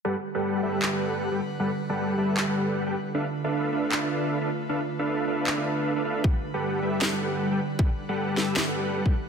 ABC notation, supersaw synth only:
X:1
M:4/4
L:1/16
Q:"Swing 16ths" 1/4=155
K:G
V:1 name="Supersaw synth"
[G,GABf] z2 [G,GABf]3 [G,GABe]3 [G,GABf]4 [G,GABg] z2 | [G,GABf] z2 [G,GABf]3 [G,GABe]3 [G,GABf]4 [G,GABg] z2 | [DABe=f] z2 [DABef]3 [DABef]3 [DABef]4 [DABef] z2 | [DABe=f] z2 [DABef]3 [DABef]3 [DABef]4 [DABef] [DABef]2 |
G, z2 [G,GABf]3 [G,GABe]3 [G,GABf]4 [G,GABg] z2 | [G,GABf] z2 [G,GABf]3 [G,GABe]3 [G,GABf]4 z3 |]